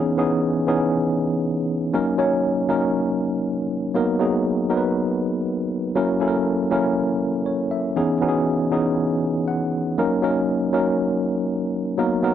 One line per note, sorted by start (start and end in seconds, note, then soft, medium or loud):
0.00 0.13 E3 medium
0.00 0.13 B3 medium
0.00 0.13 C#4 medium
0.00 0.13 D#4 medium
0.00 0.13 G#4 loud
0.17 0.58 E3 medium
0.17 0.59 B3 medium
0.17 0.59 C#4 medium
0.17 0.59 D#4 medium
0.17 0.59 G#4 loud
0.67 1.49 E3 medium
0.67 1.49 B3 medium
0.67 1.49 C#4 medium
0.67 1.49 D#4 medium
0.67 1.49 G#4 loud
1.93 2.14 F#3 medium
1.93 2.14 A#3 medium
1.93 2.14 C#4 medium
1.93 2.14 D#4 medium
1.93 2.15 A#4 loud
2.18 2.59 F#3 medium
2.18 2.59 A#3 medium
2.18 2.60 C#4 medium
2.18 2.60 D#4 medium
2.18 2.60 C#5 loud
2.69 3.50 F#3 medium
2.69 3.50 A#3 medium
2.69 3.50 C#4 medium
2.69 3.50 D#4 medium
2.69 3.51 A#4 loud
3.95 4.15 F#3 medium
3.95 4.15 A#3 medium
3.95 4.16 B3 medium
3.95 4.16 D#4 medium
3.95 4.16 A#4 medium
4.20 4.61 F#3 medium
4.20 4.61 A#3 medium
4.20 4.61 B3 medium
4.20 4.61 D#4 medium
4.20 4.61 G#4 loud
4.70 5.51 F#3 medium
4.70 5.51 B3 medium
4.70 5.51 D#4 medium
4.70 4.77 A#4 medium
4.77 5.55 B4 medium
5.95 6.16 F#3 medium
5.95 6.16 A#3 medium
5.95 6.16 C#4 medium
5.95 6.17 E4 medium
5.95 6.17 A#4 loud
6.20 6.61 F#3 medium
6.20 6.62 A#3 medium
6.20 6.62 C#4 medium
6.20 6.62 E4 medium
6.20 6.28 A4 medium
6.28 6.65 A#4 medium
6.71 7.52 F#3 medium
6.71 7.52 A#3 medium
6.71 7.52 C#4 medium
6.71 7.52 E4 medium
6.71 7.53 A#4 medium
7.46 7.70 C#5 medium
7.71 8.19 E5 medium
7.96 8.17 E3 medium
7.96 8.17 B3 medium
7.96 8.17 C#4 medium
7.96 8.17 D#4 medium
7.96 8.17 G#4 loud
8.21 8.62 E3 medium
8.21 8.62 B3 medium
8.21 8.63 C#4 medium
8.21 8.63 D#4 medium
8.21 8.28 F#4 medium
8.29 8.66 G#4 loud
8.71 9.53 E3 medium
8.71 9.53 B3 medium
8.71 9.53 C#4 medium
8.71 9.53 D#4 medium
8.71 9.54 G#4 medium
9.48 9.94 F#5 medium
9.98 10.18 F#3 medium
9.98 10.18 A#3 medium
9.98 10.18 C#4 medium
9.98 10.19 D#4 medium
9.98 10.19 A#4 loud
10.22 10.64 F#3 medium
10.22 10.64 A#3 medium
10.22 10.64 C#4 medium
10.22 10.64 D#4 medium
10.22 10.64 A#4 medium
10.72 11.54 F#3 medium
10.72 11.54 A#3 medium
10.72 11.54 C#4 medium
10.72 11.55 D#4 medium
10.72 11.55 A#4 medium
11.98 12.19 F#3 medium
11.98 12.19 A#3 medium
11.98 12.19 B3 medium
11.98 12.19 D#4 medium
11.98 12.19 A#4 loud
12.23 12.34 F#3 medium
12.23 12.34 A#3 medium
12.23 12.34 B3 medium
12.23 12.34 D#4 medium
12.23 12.34 A#4 loud